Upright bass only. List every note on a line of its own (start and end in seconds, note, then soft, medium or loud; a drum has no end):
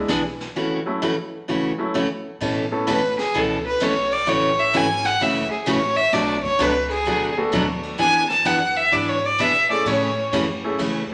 0.09 0.48 B1 medium
2.41 2.86 A2 medium
2.88 3.33 E2 medium
3.34 3.79 C#2 medium
3.80 4.25 B1 medium
4.28 4.72 A1 medium
4.74 5.19 G#1 medium
5.19 5.49 F#1 medium
5.66 6.11 A1 medium
6.12 6.58 B1 medium
6.58 7.04 C#2 medium
7.06 7.51 D2 medium
7.52 7.97 D#2 medium
7.99 8.44 E2 medium
8.45 8.91 F#2 medium
8.92 9.38 G#2 medium
9.39 9.84 B2 medium
9.85 10.31 A2 medium
10.32 10.77 F#2 medium
10.78 11.08 E2 medium
11.10 muted upright bass stroke soft